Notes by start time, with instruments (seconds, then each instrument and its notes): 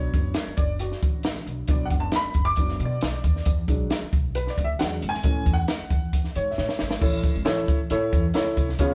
Already playing: upright piano F#3 B3 D4 C#5
0.14 upright bass F#1, kick, closed hi-hat
0.34 snare, closed hi-hat
0.47 muted upright bass stroke
0.57 upright bass F#1, upright piano D5, kick, closed hi-hat
0.79 upright piano F#4, closed hi-hat
0.92 snare
1.03 upright bass A1, kick, closed hi-hat
1.23 snare, closed hi-hat
1.36 snare
1.46 upright bass B1, closed hi-hat
1.68 upright bass B1, upright piano F#3 B3 D4 D5, kick, closed hi-hat
1.85 upright piano F#5
1.90 upright bass F#1, kick, closed hi-hat
2.00 upright piano A5
2.12 upright piano B5, snare, closed hi-hat
2.24 muted upright bass stroke
2.34 upright bass F#1, kick, closed hi-hat
2.45 upright piano D6
2.56 upright bass F#1, upright piano F#3 B3 D4, kick, closed hi-hat
2.68 snare
2.80 upright bass B2, closed hi-hat
2.85 upright piano D5
3.01 upright bass B1, snare, closed hi-hat
3.24 upright bass D#2, kick, closed hi-hat
3.36 snare
3.45 upright bass E2, kick, closed hi-hat
3.68 upright bass B1, upright piano F#3 G#3 D4, kick, closed hi-hat
3.90 snare, closed hi-hat
4.02 muted upright bass stroke
4.13 upright bass B1, kick, closed hi-hat
4.35 upright piano B4, closed hi-hat
4.47 upright piano D5, snare
4.58 upright bass D2, kick, closed hi-hat
4.64 upright piano E5
4.79 upright bass E2, upright piano F#3 G#3 D4 F#5, snare, closed hi-hat
5.02 upright bass G#1, closed hi-hat
5.09 upright piano G#5
5.14 snare
5.23 upright bass A1, upright piano E3 A3 C#4, kick, closed hi-hat
5.46 upright bass E2, kick, closed hi-hat
5.54 upright piano F#5
5.68 snare, closed hi-hat
5.81 muted upright bass stroke
5.90 upright bass E2, kick, closed hi-hat
6.13 kick, closed hi-hat
6.24 snare
6.35 upright bass G#2, upright piano C#5, closed hi-hat
6.51 upright piano E5
6.58 upright bass A2, upright piano C#5, snare
6.69 snare
6.79 upright bass G#1, snare
6.91 snare
7.01 upright bass A1, upright piano E4 A4 C#5, kick, crash
7.24 kick, closed hi-hat
7.35 upright bass G#1
7.45 upright bass A1, upright piano E4 A4 C#5, snare, closed hi-hat
7.68 upright bass A1, kick, closed hi-hat
7.90 upright bass A2, upright piano E4 A4 C#5, closed hi-hat
8.13 upright bass E2, kick, closed hi-hat
8.34 upright bass C#2, upright piano E4 A4 C#5, snare, closed hi-hat
8.57 upright bass C2, kick, closed hi-hat
8.69 snare
8.79 upright bass C#2, upright piano B3 C#4 F4 G#4 C#5, kick, closed hi-hat